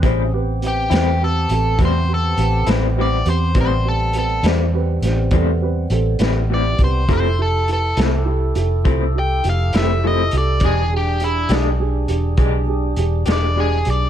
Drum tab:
HH |x-xx-xx-xx-x|x-xx-xx-xx-x|x-xx-xx-xx-x|x-xx-xx-xx-x|
SD |---o-----o--|---o-o---o--|---o-----o--|---o-----o--|
BD |o-----o-----|o-----o----o|o-----o-----|o-----o-----|